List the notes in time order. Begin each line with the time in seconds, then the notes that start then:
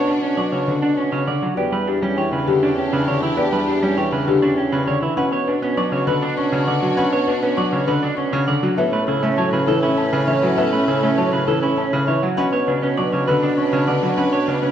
Already playing: B2 B3 D4 F#4 C#5
0.07 D4 B4
0.22 C#4
0.37 F#3 D5 C#6
0.52 C#3 C#5
0.67 D3 B4
0.82 D4
0.97 C#4 C#6
1.12 C#3 C#5
1.27 D3 D5 F#5
1.42 F#3 F#4
1.57 E2 B3 D4 G4 D5
1.72 G3 B4
1.87 D4 G4
2.02 G3 C#4
2.17 E3 C#5 G5
2.32 C#3 B4
2.48 D3 G4
2.63 C#4 D4
2.78 C#4 G5
2.93 C#3 B4
3.07 D3 C#5 D5
3.22 E3 E4
3.37 B3 G4 D5
3.52 G3 B4
3.68 D4 G4
3.82 G3 C#4
3.98 E3 C#5 G5
4.12 C#3 B4
4.27 D3 G4
4.42 C#4 D4
4.57 C#4 G5
4.72 C#3 B4
4.87 D3 C#5 D5
5.02 E3 E4
5.17 B2 C#4 D4 F#4 B4 F#5
5.32 B3 C#5
5.48 D4 B4
5.62 B3 C#4
5.77 F#3 D5 C#6
5.92 C#3 C#5
6.07 D3 B4
6.22 D4
6.37 C#4 C#6
6.52 C#3 C#5
6.67 D3 D5 F#5
6.82 F#3 F#4
6.97 C#4 B4 F#5
7.13 B3 C#5
7.27 D4 B4
7.43 B3 C#4
7.57 F#3 D5 C#6
7.72 C#3 C#5
7.87 D3 B4
8.03 D4
8.17 C#4 C#6
8.33 C#3 C#5
8.47 D3 D5 F#5
8.63 F#3 F#4
8.77 A2 B3 C#4 A4 B4 E5
8.93 A3 B4
9.07 C#3 E4 A4
9.23 A3 C#4
9.37 F#3 C#5 A5
9.53 C#3 B4
9.67 E3 A4
9.83 C#4 E4
9.97 C#4 A5
10.13 C#3 B4
10.27 E3 C#5 E5
10.43 F#3 F#4
10.57 B3 A4 E5
10.73 A3 B4
10.87 C#3 E4 A4
11.03 A3 C#4
11.17 F#3 C#5 A5
11.33 C#3 B4
11.47 E3 A4
11.63 C#4 E4
11.77 C#4 A5
11.93 C#3 B4
12.07 E3 C#5 E5
12.23 F#3 F#4
12.37 B2 C#4 D4 B4 F#5
12.53 B3 C#5
12.67 C#3 D4 B4
12.82 B3 C#4
12.97 F#3 D5 C#6
13.13 C#3 C#5
13.27 D3 B4
13.43 D4
13.57 C#4 C#6
13.73 C#3 C#5
13.88 D3 D5 F#5
14.03 F#3 F#4
14.18 C#4 B4 F#5
14.33 B3 C#5
14.48 C#3 D4 B4
14.63 B3 C#4